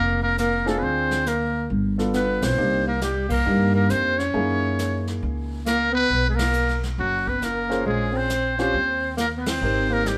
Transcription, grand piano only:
0.66 1.23 C4 medium
0.66 1.23 D4 medium
0.66 1.23 F4 medium
0.66 1.23 G#4 medium
1.98 2.55 B3 medium
1.98 2.55 D4 soft
1.98 2.55 F4 medium
1.98 2.55 A4 medium
2.58 2.84 A#3 soft
2.58 2.84 D4 medium
2.58 2.84 D#4 medium
2.58 2.84 G4 medium
3.45 4.13 A#3 medium
3.45 4.13 D4 soft
3.45 4.13 D#4 soft
3.45 4.13 G4 medium
4.33 5.57 A#3 medium
4.33 5.57 D#4 soft
4.33 5.57 E4 soft
4.33 5.57 G#4 medium
7.69 8.27 C#4 medium
7.69 8.27 F4 medium
7.69 8.27 G#4 medium
7.69 8.27 C5 medium
8.59 8.73 C#4 medium
8.59 8.73 F4 medium
8.59 8.73 G4 medium
8.59 8.73 C5 medium
9.63 10.18 C4 medium
9.63 10.18 D#4 soft
9.63 10.18 G4 soft
9.63 10.18 A#4 medium

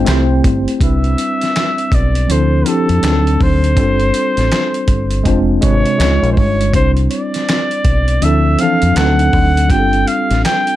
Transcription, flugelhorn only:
0.00 0.44 G5 loud
0.83 1.96 E5 medium
1.94 2.33 D5 medium
2.31 2.69 C5 medium
2.67 3.44 A4 medium
3.42 5.39 C5 medium
5.64 6.28 C#5 medium
6.32 6.39 C5 medium
6.38 6.74 C#5 medium
6.75 6.91 C5 medium
7.11 8.25 D5 medium
8.23 8.62 E5 medium
8.61 8.98 F5 loud
8.96 9.72 F#5 loud
9.71 10.09 G5 loud
10.07 10.44 F5 loud
10.45 10.76 G5 loud

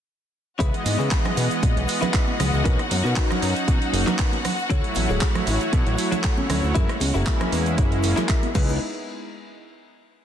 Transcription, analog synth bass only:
0.60 0.72 C#2 loud
0.86 0.97 G#2 medium
0.99 1.09 C#3 medium
1.37 1.49 B2 loud
1.63 1.74 A#2 medium
1.76 1.86 B1 loud
2.40 2.51 C#2 medium
2.54 2.64 C#2 medium
2.65 2.77 B1 loud
2.91 3.03 F#2 medium
3.05 3.15 B2 medium
3.42 3.54 F#2 loud
3.68 3.79 B2 medium
3.93 4.05 F#1 medium
4.70 4.82 D2 medium
4.96 5.08 A1 medium
5.10 5.20 D1 medium
5.47 5.59 A1 loud
5.73 5.85 B2 medium
5.87 5.97 A1 loud
6.50 6.61 D2 medium
6.63 6.73 D2 medium
6.76 6.87 F#2 loud
7.01 7.13 C#2 medium
7.15 7.25 F#1 loud
7.52 7.80 E2 loud
7.78 8.14 F#1 loud
8.55 8.79 C#2 loud

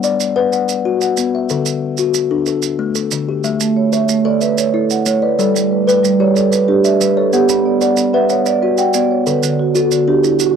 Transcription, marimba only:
3.61 3.93 A3 medium
3.76 4.25 C#5 medium
3.93 4.41 E5 medium
4.09 4.41 A3 medium
4.25 4.74 D5 medium
4.41 4.90 B4 medium
4.58 4.90 C#5 medium
4.74 5.22 A4 medium
4.91 5.39 F#5 medium
5.06 5.38 C#5 medium
5.22 5.70 B4 medium
5.39 5.71 A4 medium
5.55 5.87 G3 medium
5.71 6.19 B4 medium
5.87 6.36 D5 medium
6.03 6.35 G3 medium
6.20 6.68 C#5 medium
6.35 6.84 A4 medium
6.51 6.84 B4 medium
6.68 7.16 G4 medium
6.84 7.33 E5 medium
7.00 7.33 B4 medium
7.17 7.65 A4 medium
7.33 7.65 G4 medium
7.49 7.81 B3 medium
7.65 8.14 D5 medium
7.81 8.30 F#5 medium
7.97 8.30 B3 medium
8.13 8.62 E5 medium
8.30 8.78 C#5 medium
8.46 8.78 D5 medium
8.62 9.11 B4 medium
8.78 9.27 G5 medium
8.95 9.27 D5 medium
9.11 9.60 C#5 medium
9.27 9.59 B4 medium
9.43 9.76 D3 medium
9.60 10.08 F#4 medium
9.76 10.24 A4 medium
9.92 10.24 D3 medium
10.08 10.56 G4 medium
10.24 10.56 E4 medium
10.40 10.56 F#4 medium

